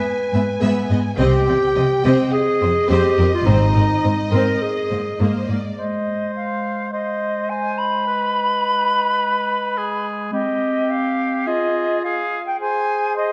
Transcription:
Already playing: B4 G#5
0.33 G#2 B3 E5
0.61 G#2 B3 E5
0.90 G#2 B3 D#5
1.18 C2 C3 C4 G4 D#5 G5
1.48 C3 C4 D5
1.76 C3 C4 D#5
2.05 C3 C4 G4 D#5
2.32 G#4 D#5
2.61 F2 C4 C5
2.89 F2 C4 G4 C5
3.18 F2 C4 A#4
3.34 F4
3.46 G#1 G#2 C4 D#4 C5
3.74 G#2 C4 A#4
4.03 G#2 C4 C5
4.32 G#2 C4 A#4 C5
4.62 G#4
4.89 G#2 A#3 C5
5.20 G#2 A#3 C5
5.48 G#2 A#3 D5
5.78 G#3 C5 D#5
6.35 F5
6.92 C5 D#5
7.49 C5 G#5
7.77 B5
8.07 B4
9.78 G#4
10.32 C4 G4 D#5
10.90 F5
11.47 F4 G#4 D#5
12.03 G#4 F5
12.46 G5
12.60 G#4 C5 G#5
13.16 C5 D#5

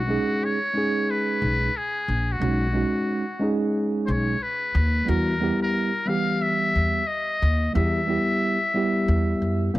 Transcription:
Already playing: B1 F#4
0.07 G#3 C#4 D#4 G#4
0.44 C#5
0.74 G#3 C#4 D#4 G#4
1.11 B4
1.42 B1
1.77 G#4
2.08 A#1
2.32 F#4
2.40 B1 G#3 C#4 D#4 F#4
2.73 G#3 C#4 D#4 F#4
3.39 G#3 C#4 D#4 G#4
4.06 B1 C5 C#5
4.43 B4
4.75 D#2
5.05 E2 G3 B3 E4
5.09 F#4 A#4
5.40 G3 B3 E4 G4
5.62 A#4
6.06 E3 G3 B3 G4 F5
6.42 E5
6.75 E2
7.07 D#5
7.42 D#2
7.73 E2 G3 B3 E4 G4 E5
8.07 G3 B3 E4 G4
8.74 G3 B3 E4 G4
9.08 E2
9.42 F#2
9.74 B1 A#3 C#4

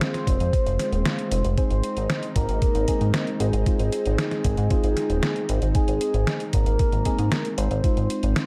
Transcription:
Already playing: G#3 C4 F4 C5
0.01 snare, closed hi-hat
0.14 snare, closed hi-hat
0.27 F1, kick, closed hi-hat
0.40 F2, closed hi-hat
0.53 kick, closed hi-hat
0.67 F1, closed hi-hat
0.79 snare, closed hi-hat
0.93 D#1, closed hi-hat
1.05 snare, closed hi-hat
1.19 closed hi-hat
1.32 F1, closed hi-hat
1.45 F1, closed hi-hat
1.58 G#3 C4 D#4 G#4 C5, kick, closed hi-hat
1.70 G#1, closed hi-hat
1.84 closed hi-hat
1.97 G#1, closed hi-hat
2.10 snare, closed hi-hat
2.23 closed hi-hat
2.36 G#1 A#4, kick, closed hi-hat
2.49 G#1, closed hi-hat
2.62 kick, closed hi-hat
2.75 G#1, closed hi-hat
2.88 G#3 C4 D#4 G#4, kick, closed hi-hat
3.01 G#2, closed hi-hat
3.14 snare, closed hi-hat
3.27 closed hi-hat
3.40 G#1 G#4, closed hi-hat
3.53 G#1, closed hi-hat
3.66 G#3 C4 D#4 F4, kick, closed hi-hat
3.79 G#1, closed hi-hat
3.92 closed hi-hat
4.06 G#1, closed hi-hat
4.18 snare, closed hi-hat
4.31 snare, closed hi-hat
4.44 G#1, kick, closed hi-hat
4.57 G#2, closed hi-hat
4.70 G#3 C4 D#4 F4, kick, closed hi-hat
4.84 G#1, closed hi-hat
4.97 snare, closed hi-hat
5.10 D#1, closed hi-hat
5.23 snare, closed hi-hat
5.36 closed hi-hat
5.49 G#1, closed hi-hat
5.62 G#1, closed hi-hat
5.75 G#3 C4 D#4 G#4, kick, closed hi-hat
5.88 G#1, closed hi-hat
6.01 closed hi-hat
6.14 G#1, closed hi-hat
6.27 snare, closed hi-hat
6.40 closed hi-hat
6.53 G#1 A#4, kick, closed hi-hat
6.66 G#1, closed hi-hat
6.79 kick, closed hi-hat
6.92 G#1, closed hi-hat
7.05 G#3 C4 D#4 G#4, kick, closed hi-hat
7.19 G#2, closed hi-hat
7.32 snare, closed hi-hat
7.45 closed hi-hat
7.58 G#1 C5, closed hi-hat
7.71 G#1, closed hi-hat
7.84 G#3 C4 D#4 F4, kick, closed hi-hat
7.97 G#1, closed hi-hat
8.10 closed hi-hat
8.23 G#1, closed hi-hat
8.36 snare, closed hi-hat

